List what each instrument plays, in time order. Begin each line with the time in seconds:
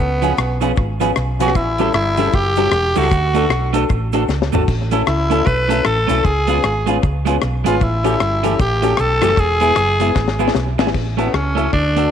Already playing: tenor saxophone B3
0.00 fingered electric bass C#2
0.22 clean electric guitar F3 B3 C#4 G#4, upright piano C#4 F4 B4, closed hi-hat, cabasa
0.38 fingered electric bass B1, cross-stick, cabasa
0.61 clean electric guitar F3 B3 C#4 G#4, upright piano C#4 F4 B4, closed hi-hat, cabasa
0.76 fingered electric bass G#1, upright piano F4 B4, kick, cabasa
1.00 clean electric guitar F3 B3 C#4 G#4, upright piano C#4 F4 B4, closed hi-hat, cabasa
1.16 fingered electric bass B1, cross-stick, cabasa
1.39 clean electric guitar F3 B3 C#4 G#4, upright piano C#4 F4 B4, tenor saxophone F#4, closed hi-hat, cabasa
1.48 cross-stick
1.55 fingered electric bass A1, tenor saxophone E4, kick, cabasa
1.78 clean electric guitar G3 C#4 E4 A4, upright piano C#4 G4 A4, closed hi-hat, cabasa
1.93 fingered electric bass G1, tenor saxophone E4, cross-stick, cabasa
2.17 clean electric guitar G3 C#4 E4 A4, upright piano C#4 G4 A4, closed hi-hat, cabasa
2.32 fingered electric bass F#1, upright piano G4 A4, tenor saxophone G4, kick, cabasa
2.56 clean electric guitar G3 C#4 E4 A4, upright piano C#4 G4 A4, closed hi-hat, cabasa
2.72 fingered electric bass E1, cross-stick, cabasa
2.96 fingered electric bass C#2, clean electric guitar G3 C#4 E4 A4, upright piano C#4 G4 A4, tenor saxophone F#4, open hi-hat, cabasa
3.03 cross-stick
3.11 fingered electric bass D2, kick, hi-hat pedal, cabasa
3.34 clean electric guitar A3 D4 F#4 A4, upright piano D4 F#4 A4, closed hi-hat, cabasa
3.49 fingered electric bass B1, cross-stick, cabasa
3.73 clean electric guitar A3 D4 F#4 A4, upright piano D4 F#4 A4, closed hi-hat, cabasa
3.89 fingered electric bass A1, kick, cabasa
4.13 clean electric guitar A3 D4 F#4 A4, upright piano D4 F#4 A4, closed hi-hat, cabasa
4.28 fingered electric bass C#2, snare, cabasa
4.42 snare
4.52 fingered electric bass G#1, clean electric guitar A3 D4 F#4 A4, upright piano D4 F#4 A4, floor tom, cabasa
4.68 fingered electric bass A1, kick, crash, cabasa
4.91 clean electric guitar A3 C#4 E4 A4, upright piano C#4 E4 A4, closed hi-hat, cabasa
5.06 fingered electric bass C#2, tenor saxophone E4, cross-stick, cabasa
5.30 clean electric guitar A3 C#4 E4 A4, upright piano C#4 E4 A4, closed hi-hat, cabasa
5.45 fingered electric bass B1, upright piano E4 A4, tenor saxophone B4, muted clean electric guitar stroke, kick, cabasa
5.69 clean electric guitar A3 C#4 E4 A4, upright piano C#4 E4 A4, closed hi-hat, cabasa
5.85 fingered electric bass A1, tenor saxophone A4, cross-stick, cabasa
6.08 fingered electric bass B1, clean electric guitar A3 C#4 E4 A4, upright piano C#4 E4 A4, closed hi-hat, cabasa
6.24 fingered electric bass C#2, tenor saxophone G#4, kick, cabasa
6.47 clean electric guitar G#3 B3 F4 G#4, upright piano C#4 F4 B4, closed hi-hat, cabasa
6.63 fingered electric bass G#1, cross-stick, cabasa
6.87 clean electric guitar G#3 B3 F4 G#4, upright piano C#4 F4 B4, closed hi-hat, cabasa
7.03 fingered electric bass C#2, kick, cabasa
7.25 clean electric guitar G#3 B3 F4 G#4, upright piano C#4 F4 B4, closed hi-hat, cabasa
7.42 fingered electric bass B1, cross-stick, cabasa
7.64 fingered electric bass G#1, clean electric guitar G#3 B3 F4 G#4, upright piano C#4 F4 B4, tenor saxophone F4, closed hi-hat, cabasa
7.81 fingered electric bass A1, tenor saxophone E4, kick, cabasa
8.04 clean electric guitar E3 A3 C#4 G4, upright piano C#4 G4 A4, closed hi-hat, cabasa
8.20 fingered electric bass G1, cross-stick, cabasa
8.43 clean electric guitar E3 A3 C#4 G4, upright piano C#4 G4 A4, closed hi-hat, cabasa
8.59 fingered electric bass A1, upright piano G4 A4, tenor saxophone G4, kick, cabasa
8.82 clean electric guitar E3 A3 C#4 G4, upright piano C#4 G4 A4, closed hi-hat, cabasa
8.97 fingered electric bass B1, tenor saxophone A4, cross-stick, cabasa
9.21 fingered electric bass F#1, clean electric guitar E3 A3 C#4 G4, upright piano C#4 G4 A4, cross-stick, closed hi-hat, cabasa
9.29 cross-stick
9.37 fingered electric bass E1, tenor saxophone G#4, kick, cabasa
9.60 clean electric guitar G#3 B3 E4 G#4, upright piano B3 E4 G#4, closed hi-hat, cabasa
9.76 fingered electric bass F#1, cross-stick, cabasa
10.00 clean electric guitar G#3 B3 E4 G#4, upright piano B3 E4 G#4, closed hi-hat, cabasa
10.15 fingered electric bass G#1, kick, snare, cabasa
10.28 snare
10.39 clean electric guitar G#3 B3 E4 G#4, upright piano B3 E4 G#4, cabasa
10.48 snare
10.55 fingered electric bass B1, snare, cabasa
10.79 clean electric guitar G#3 B3 E4 G#4, upright piano B3 E4 G#4, snare, cabasa
10.87 snare
10.94 fingered electric bass A1, kick, crash
11.17 clean electric guitar A3 C#4 E4 A4, tenor saxophone B3, upright piano C#4 E4 A4, closed hi-hat
11.34 fingered electric bass C#2, tenor saxophone C#4, cross-stick
11.55 clean electric guitar A3 C#4 E4 A4, upright piano C#4 E4 A4, closed hi-hat
11.73 fingered electric bass D2, tenor saxophone D4, kick
11.96 clean electric guitar A3 D4 F#4 A4, upright piano D4 F#4 A4, closed hi-hat